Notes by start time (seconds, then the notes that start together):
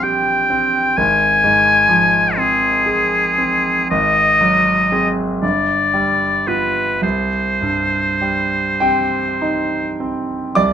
Already playing: A#1 A#2 G3 C4
0.03 G4 G5
0.50 C4
0.97 G#1 G#5
1.44 G#2
1.89 F3
2.37 C4 G#4
2.86 G#4
3.38 C4
3.90 G#1 D#5
4.41 F#3
4.92 C4 G#4
5.42 G1 D5
5.94 G3
6.47 B3 F4 B4
7.02 C2 C5
7.61 G2
8.21 G3
8.80 C4 G4 G5
9.42 D#4
10.00 C4
10.55 C2 D5 D6